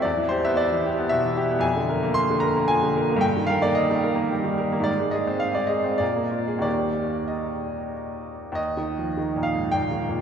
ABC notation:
X:1
M:3/4
L:1/16
Q:1/4=109
K:Em
V:1 name="Grand piano"
d2 c e d4 e4 | [K:Eb] a4 c'2 b2 a4 | g2 f d e4 z4 | d2 e2 f d e2 d4 |
d4 e4 z4 | e6 f2 g4 |]
V:2 name="Grand piano" clef=bass
E,, E, G B,2 E, G B, B,, E, G B, | [K:Eb] F,, D, B B,2 D, B B, F, D, B B, | G,, E, B B,2 E, B B, G, E, B B, | A,, A, A C2 A, A C B,, B, F A |
[E,,E,B,G]12 | (3E,,2 E,2 F,2 (3E,2 B,,2 A,,2 (3B,,2 E,2 B,,2 |]